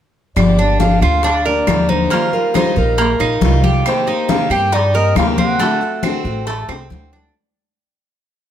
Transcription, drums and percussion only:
0.36 high bongo medium
0.36 high conga soft
0.36 claves medium
0.58 high bongo soft
0.58 high conga soft
0.80 high bongo medium
0.80 high conga medium
1.01 high bongo soft
1.01 high conga soft
1.01 claves medium
1.23 high bongo medium
1.23 high conga soft
1.46 high conga soft
1.67 high bongo medium
1.67 low bongo medium
1.67 high conga medium
1.67 claves medium
1.89 high bongo soft
1.89 high conga medium
2.10 high bongo medium
2.10 high conga soft
2.33 high conga soft
2.54 high bongo medium
2.54 high conga medium
2.54 claves medium
2.76 high bongo soft
2.76 high conga soft
2.98 high bongo medium
2.98 high conga soft
3.20 high bongo soft
3.20 high conga soft
3.20 claves medium
3.41 high bongo medium
3.41 low bongo medium
3.41 high conga medium
3.64 high bongo soft
3.64 high conga medium
3.85 high bongo medium
3.85 high conga soft
3.85 claves medium
4.07 high bongo soft
4.07 high conga soft
4.29 high bongo medium
4.29 high conga medium
4.51 high bongo soft
4.51 high conga soft
4.51 claves medium
4.72 high bongo medium
4.72 high conga soft
4.95 high conga soft
5.16 high bongo medium
5.16 low bongo medium
5.16 high conga medium
5.16 claves medium
5.38 high bongo soft
5.38 high conga medium
5.60 high bongo medium
5.60 high conga soft
5.81 high conga soft
6.03 high bongo medium
6.03 high conga medium
6.03 claves medium
6.25 high bongo soft
6.25 high conga soft
6.47 high bongo medium
6.47 high conga soft
6.69 high bongo medium
6.69 high conga soft
6.69 claves medium
6.90 low bongo medium
6.90 high conga medium
7.13 low bongo medium

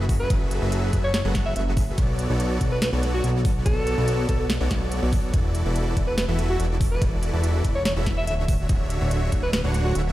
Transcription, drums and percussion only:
0.09 kick loud
0.09 open hi-hat medium
0.30 kick loud
0.30 closed hi-hat medium
0.51 closed hi-hat medium
0.72 closed hi-hat medium
0.93 kick medium
0.93 closed hi-hat medium
1.14 snare loud
1.14 closed hi-hat medium
1.35 kick medium
1.35 snare medium
1.35 closed hi-hat medium
1.56 closed hi-hat medium
1.77 kick loud
1.77 open hi-hat medium
1.98 kick loud
1.98 closed hi-hat medium
2.19 closed hi-hat medium
2.40 closed hi-hat medium
2.61 kick medium
2.61 closed hi-hat medium
2.82 snare loud
2.82 closed hi-hat medium
3.03 closed hi-hat medium
3.24 closed hi-hat medium
3.45 kick loud
3.45 open hi-hat medium
3.66 kick loud
3.66 closed hi-hat medium
3.87 closed hi-hat medium
4.08 closed hi-hat medium
4.29 kick medium
4.29 closed hi-hat medium
4.50 snare loud
4.50 closed hi-hat medium
4.71 kick medium
4.71 snare medium
4.71 closed hi-hat medium
4.92 closed hi-hat medium
5.13 kick loud
5.13 open hi-hat medium
5.34 kick loud
5.34 closed hi-hat medium
5.55 closed hi-hat medium
5.76 closed hi-hat medium
5.97 kick medium
5.97 closed hi-hat medium
6.18 snare loud
6.18 closed hi-hat medium
6.39 closed hi-hat medium
6.60 closed hi-hat medium
6.81 kick loud
6.81 open hi-hat loud
7.02 kick loud
7.02 closed hi-hat medium
7.23 closed hi-hat medium
7.44 closed hi-hat medium
7.65 kick medium
7.65 closed hi-hat medium
7.85 snare loud
7.85 closed hi-hat medium
8.06 kick medium
8.06 snare medium
8.06 closed hi-hat medium
8.27 closed hi-hat medium
8.48 kick loud
8.48 open hi-hat loud
8.69 kick loud
8.69 closed hi-hat medium
8.90 closed hi-hat medium
9.11 closed hi-hat medium
9.32 kick medium
9.32 closed hi-hat medium
9.53 snare loud
9.53 closed hi-hat medium
9.74 closed hi-hat medium
9.95 closed hi-hat medium

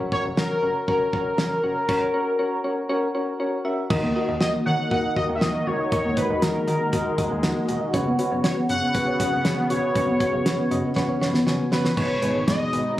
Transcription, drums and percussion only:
0.12 kick medium
0.37 snare loud
0.88 kick medium
1.13 kick medium
1.38 snare loud
1.89 kick loud
1.89 crash medium
3.90 kick loud
3.90 crash medium
4.41 snare loud
4.91 kick medium
5.16 kick medium
5.41 snare loud
5.92 kick loud
5.92 closed hi-hat medium
6.17 kick loud
6.17 closed hi-hat medium
6.42 snare loud
6.42 closed hi-hat medium
6.68 closed hi-hat medium
6.93 kick medium
6.93 closed hi-hat medium
7.18 kick medium
7.18 closed hi-hat medium
7.43 snare loud
7.43 closed hi-hat medium
7.69 closed hi-hat medium
7.94 kick loud
7.94 closed hi-hat medium
8.19 closed hi-hat medium
8.44 snare loud
8.44 closed hi-hat medium
8.69 closed hi-hat medium
8.94 kick medium
8.94 closed hi-hat medium
9.20 kick medium
9.20 closed hi-hat medium
9.45 snare loud
9.45 closed hi-hat medium
9.70 closed hi-hat medium
9.95 kick loud
9.95 closed hi-hat medium
10.20 kick loud
10.20 closed hi-hat medium
10.46 snare loud
10.46 closed hi-hat medium
10.71 closed hi-hat medium
10.96 kick medium
10.96 snare medium
11.22 snare medium
11.34 snare medium
11.47 snare medium
11.72 snare loud
11.85 snare medium
11.97 kick loud
11.97 crash medium
12.22 closed hi-hat medium
12.48 kick loud
12.48 snare loud
12.48 closed hi-hat medium
12.73 closed hi-hat medium

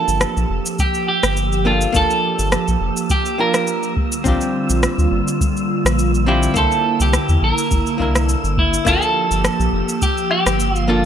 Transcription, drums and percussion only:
0.08 shaker medium
0.21 cross-stick medium
0.21 shaker medium
0.37 shaker soft
0.66 shaker medium
0.79 kick loud
0.79 shaker medium
0.94 shaker soft
1.23 cross-stick medium
1.23 shaker medium
1.37 shaker soft
1.52 shaker soft
1.81 shaker medium
1.94 kick loud
1.94 shaker medium
2.10 shaker soft
2.39 shaker medium
2.52 cross-stick medium
2.52 shaker medium
2.68 shaker soft
2.97 shaker medium
3.10 kick loud
3.10 shaker medium
3.26 shaker soft
3.54 cross-stick medium
3.54 shaker medium
3.67 shaker soft
3.83 shaker soft
3.97 kick loud
4.12 shaker medium
4.25 kick loud
4.25 shaker medium
4.41 shaker soft
4.70 shaker medium
4.83 cross-stick medium
4.83 shaker medium
4.99 shaker soft
5.28 shaker medium
5.41 kick loud
5.41 shaker medium
5.57 shaker soft
5.86 cross-stick medium
5.86 shaker medium
5.99 shaker medium
6.15 shaker soft
6.43 shaker medium
6.56 kick loud
6.56 shaker medium
6.72 shaker soft
7.00 shaker medium
7.13 cross-stick medium
7.13 shaker medium
7.29 shaker soft
7.58 shaker medium
7.71 kick loud
7.71 shaker medium
7.87 shaker soft
8.00 kick medium
8.15 cross-stick medium
8.15 shaker medium
8.29 shaker medium
8.45 shaker soft
8.58 kick loud
8.74 shaker medium
8.86 kick loud
8.86 low woodblock medium
8.86 shaker medium
9.02 shaker soft
9.31 shaker medium
9.44 cross-stick medium
9.44 shaker medium
9.60 shaker soft
9.89 shaker medium
10.02 kick loud
10.02 shaker medium
10.18 shaker soft
10.31 low woodblock medium
10.46 cross-stick medium
10.46 shaker medium
10.60 shaker medium
10.76 shaker soft

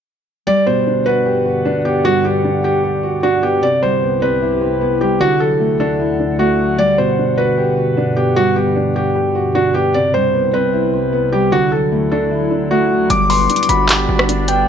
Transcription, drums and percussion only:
13.10 closed hi-hat medium
13.30 open hi-hat medium
13.50 closed hi-hat medium
13.56 closed hi-hat medium
13.63 closed hi-hat medium
13.69 closed hi-hat medium
13.89 clap loud
13.89 closed hi-hat medium
14.19 cross-stick loud
14.29 closed hi-hat medium
14.48 closed hi-hat medium

